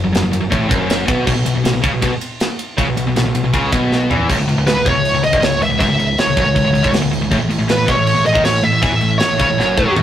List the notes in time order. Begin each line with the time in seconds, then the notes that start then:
0.03 F#1 F#2
0.13 F#1 F#2, snare, ride
0.22 F#1 F#2
0.31 F#1 F#2, ride
0.40 F#1 F#2
0.50 A1 A2, kick, ride
0.68 F#1 F#2, kick, ride
0.90 snare, ride
1.06 B1 B2, kick, ride
1.26 B1 B2, kick, crash
1.35 B1 B2
1.45 B1 B2, ride
1.55 B1 B2
1.64 B1 B2, snare, ride
1.73 B1 B2
1.82 C#2 C#3, kick, ride
1.93 B1 B2
2.02 B1 B2, kick, ride
2.21 ride
2.40 snare, ride
2.59 ride
2.78 C#2 C#3, kick, ride
2.87 B1 B2
2.97 B1 B2, ride
3.06 B1 B2
3.16 B1 B2, snare, ride
3.25 B1 B2
3.35 B1 B2, ride
3.43 B1 B2
3.53 C#2 C#3, kick, ride
3.72 B1 B2, kick, ride
3.92 snare
4.10 E2 E3, floor tom
4.29 C#1 C#2, kick, crash
4.39 C#1 C#2
4.48 C#1 C#2, crash
4.57 C#1 C#2
4.66 C#1 C#2 B4, snare, crash
4.76 C#1 C#2
4.85 E1 E2 C#5, kick, crash
4.95 C#1 C#2
5.05 crash
5.14 C#1 C#2
5.23 C#1 C#2 D#5, crash
5.33 G1 G2, kick
5.42 C#1 C#2 C#5, snare, crash
5.61 C#1 C#2 E5, crash
5.70 C#1 C#2
5.79 G#1 G#2 E5, kick, crash
5.89 C#1 C#2
5.98 C#1 C#2, crash
6.18 C#5, snare, crash
6.27 C#1 C#2
6.37 F#1 F#2, kick, crash
6.46 C#1 C#2
6.55 C#1 C#2, kick, crash
6.64 C#1 C#2
6.73 C#1 C#2, crash
6.83 C#1 C#2, kick
6.92 C#1 C#2, snare, crash
7.02 C#1 C#2
7.11 C#1 C#2, crash
7.22 C#1 C#2
7.31 A1 A2, kick, crash
7.40 A1 A2
7.49 A1 A2, crash
7.59 A1 A2
7.68 A1 A2 B4, snare, crash
7.77 A1 A2
7.86 B1 B2 C#5, kick, crash
7.97 A1 A2
8.07 crash
8.15 A1 A2
8.25 A1 A2 D#5, crash
8.34 D#2 D#3, kick
8.44 A1 A2 C#5, snare, crash
8.63 A1 A2 E5, crash
8.72 A1 A2
8.82 E2 E3 E5, kick, crash
8.91 A1 A2
9.01 A1 A2, crash
9.19 C#5, snare, crash
9.28 A1 A2
9.38 C#2 C#3, kick, crash
9.48 A1 A2
9.58 F#1 F#2, snare
9.77 A2 A3, kick
9.86 F#2 F#3
9.96 A1 A2, mid tom